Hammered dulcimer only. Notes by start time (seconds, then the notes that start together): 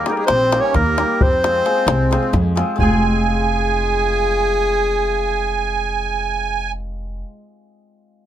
0.07 G3 A#3 D#4 G4 A#4
0.52 G3 A#3 D#4 G4 A#4
0.99 G3 A#3 D#4 G4 A#4
1.44 G#3 C4 F4 G#4 C5
1.65 G#3 C4 F4 G#4 C5
2.11 G#3 C4 F4 G#4 C5
2.56 G#3 C4 F4 G#4 C5
2.76 G#3 C4
2.80 F4 G#4